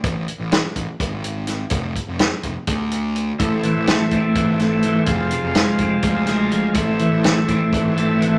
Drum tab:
HH |xxxxxxx|xxxxxxx|xxxxxxx|xxxxxxx|
SD |--o---o|--o----|--o--o-|--o--o-|
BD |o--oo--|oo-oo--|o--oo--|o--oo--|

HH |xxxxxxx|
SD |--o----|
BD |o--oo--|